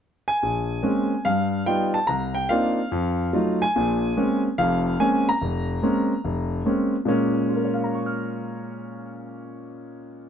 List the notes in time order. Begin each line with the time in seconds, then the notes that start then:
0.28 G#5
0.43 A#1
0.83 G#3 A#3 C4 C#4
1.25 G2 F5
1.66 G3 B3 D#4 F4 G5
1.94 A5
2.07 C2 A#5
2.35 G5
2.49 A#3 C4 D4 D#4 F4 F5
2.92 F2
3.33 F#3 A3 D#4 F4
3.62 G#5
3.76 A#1 A#2
4.17 G#3 A#3 C4 C#4
4.58 F1 F2 F5
5.00 G#3 A#3 C4 C#4 G#5
5.29 A#5
5.41 F1
5.83 G#3 A#3 C4 C#4
6.25 F1
6.66 G#3 A#3 C4 C#4
7.05 A#2 G#3 A#3 C#4
7.49 F4
7.56 A#4
7.65 C#5
7.74 F5
7.84 A#5
7.95 C#6
8.06 F6